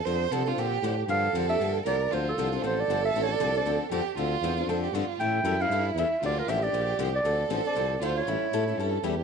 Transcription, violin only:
X:1
M:4/4
L:1/8
Q:"Swing" 1/4=234
K:Dm
V:1 name="Violin"
c2 A F G3 z | A6 B2 | F4 A4- | A6 G2 |
F4 A G F2 | E8 | F2 G6 | A6 F2 |
E4 A2 G2 |]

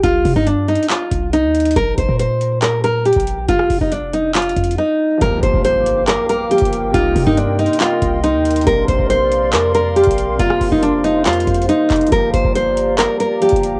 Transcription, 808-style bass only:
X:1
M:4/4
L:1/16
Q:1/4=139
K:Gm
V:1 name="808-style bass" clef=bass
C,,2 C, G,,4 z3 C,,3 E,,3 | B,,,2 B,,, B,,8- B,,2 B,,,3 | F,,,2 F,,, F,,,6- F,,, F,,2 z4 | G,,,2 G,,, G,,,6 z4 G,,,3 |
C,,2 C, G,,4 z3 C,,3 E,,3 | B,,,2 B,,,6 F,,4- F,, B,,,3 | F,,,2 F,,,6 F,,2 F,,2 z2 F,,,2 | G,,,2 G,,, G,,,6 z4 G,,,3 |]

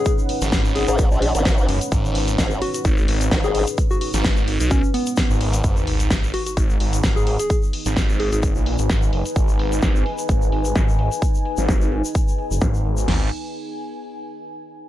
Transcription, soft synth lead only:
X:1
M:4/4
L:1/16
Q:"Swing 16ths" 1/4=129
K:G#m
V:1 name="Soft synth lead"
z6 G G z8 | z6 F F z4 z G G z | z F F z4 z C z B,6 | z6 F F z4 z G G G |
z6 G G z8 | z16 | z16 | z16 |]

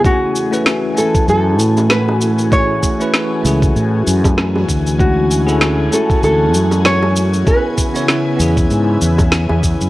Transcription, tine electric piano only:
X:1
M:4/4
L:1/16
Q:"Swing 16ths" 1/4=97
K:F#m
V:1 name="Tine electric piano"
[A,CEG]3 [A,CEB]3 [A,CEg]8- [A,CEg]2 | [A,CEG]3 [A,CEB]3 [A,CEG]8- [A,CEG]2 | [G,CEF]3 [CEGA]3 [A,CEF]8- [A,CEF]2 | [B,CEG]3 [B,CEc]3 [B,CEG]8- [B,CEG]2 |]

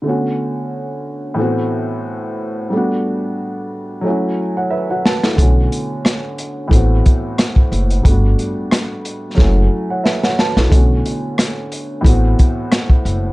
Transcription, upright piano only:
X:1
M:4/4
L:1/16
Q:"Swing 16ths" 1/4=90
K:Bm
V:1 name="Upright piano"
z16 | z8 z3 [cf] [Be] [Fcf] [FBa] [EA]- | [EA] z12 z3 | z8 z3 [cf] [Be] [Fcf] [FBa] [EA]- |
[EA] z12 z3 |]
V:2 name="Upright piano"
[D,A,B,CF]8 [A,,E,A,B,=CF]8 | [G,A,B,DF]8 [F,A,CEF]8 | [D,A,B,CF]8 [A,,E,A,B,=CF]8 | [G,A,B,DF]8 [F,A,CEF]8 |
[D,A,B,CF]8 [A,,E,A,B,=CF]8 |]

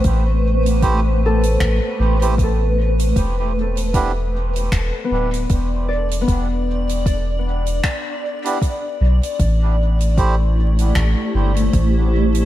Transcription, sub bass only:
X:1
M:4/4
L:1/8
Q:"Swing 16ths" 1/4=77
K:Am
V:1 name="Sub bass" clef=bass
A,,,4 A,,, A,,,3 | E,,,4 E,,, D,,, E,,,2 | E,,,4 z3 B,,, | A,,,4 A,,, G,,, A,,,2 |]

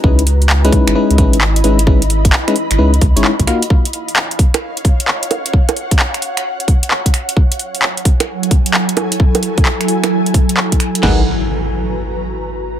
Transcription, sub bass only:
X:1
M:4/4
L:1/16
Q:"Swing 16ths" 1/4=131
K:G#m
V:1 name="Sub bass" clef=bass
C,,6 z G,,, z C,, G,,,4 G,,,2- | G,,,4 z3 G,,, C,,2 C,, G,,, z C,, z2 | z16 | z16 |
z16 | z16 | G,,,2 z12 z2 |]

